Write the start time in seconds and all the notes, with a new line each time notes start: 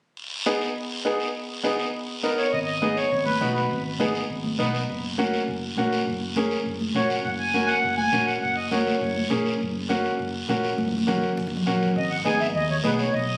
0.17 long guiro
0.46 B3 D#4 G#4, short guiro
0.61 short guiro
0.76 long guiro
1.05 B3 D#4 G#4, short guiro
1.20 short guiro
1.35 long guiro
1.64 B3 D#4 G#4, short guiro
1.79 short guiro
1.94 long guiro
2.23 B3 D#4 A#4, short guiro
2.38 C#5, short guiro
2.52 G#1 D#5, long guiro
2.66 D#5
2.82 B3 D#4 G#4, high conga, short guiro
2.96 C#5, short guiro
3.12 G#1, long guiro
3.26 B4, high conga
3.41 B1 B3 D#4 F#4, high conga, short guiro
3.55 B4, short guiro
3.71 G#1, long guiro
4.00 B3 D#4 G#4, high conga, short guiro
4.15 short guiro
4.30 G#1, long guiro
4.44 high conga
4.59 B1 B3 D#4 B4, high conga, short guiro
4.75 short guiro
4.89 F#1, long guiro
5.18 A#3 C#4 F#4, high conga, short guiro
5.33 short guiro
5.48 F#1, long guiro
5.77 A#1 A#3 C#4 F#4, high conga, short guiro
5.92 short guiro
6.07 F#1, long guiro
6.36 A#3 C#4 G#4, high conga, short guiro
6.51 short guiro
6.66 F#1, long guiro
6.80 high conga
6.95 A#1 A#3 C#4 F#4 C#5, high conga, short guiro
7.09 F#5, short guiro
7.24 F#1 F#5, long guiro
7.39 G#5
7.54 A#3 C#4 F#4, high conga, short guiro
7.66 F#5, short guiro
7.83 F#1, long guiro
7.97 G#5, high conga
8.12 A#1 A#3 C#4 F#4, high conga, short guiro
8.26 F#5, short guiro
8.42 F#1 F#5, long guiro
8.56 D#5
8.71 A#3 C#4 F#4 C#5, high conga, short guiro
8.87 short guiro
9.01 F#1, long guiro
9.16 high conga
9.30 A#1 A#3 C#4 G#4, high conga, short guiro
9.46 short guiro
9.60 F#1, long guiro
9.89 A#3 C#4 F#4, high conga, short guiro
10.04 short guiro
10.19 F#1, long guiro
10.49 A#1 A#3 C#4 F#4, high conga, short guiro
10.63 short guiro
10.78 F#1, high conga, long guiro
10.88 high conga
10.98 high conga
11.07 A#3 C#4 F#4, low conga, short guiro
11.18 low conga
11.22 short guiro
11.37 F#1, low conga, long guiro
11.47 low conga
11.57 low conga
11.66 A#1 A#3 C#4 F#4, short guiro
11.76 low conga
11.81 short guiro
11.86 low conga
11.96 G#1 D#5, high conga, long guiro
12.11 F#5
12.25 G#1 B3 D#4 G#4 G#5, high conga, short guiro
12.40 E5, short guiro
12.55 D#2 D#5, high conga, long guiro
12.70 C#5
12.84 B1 B3 D#4 G#4 B4, high conga, short guiro
12.99 C#5, short guiro
13.14 B1 D#5, high conga, long guiro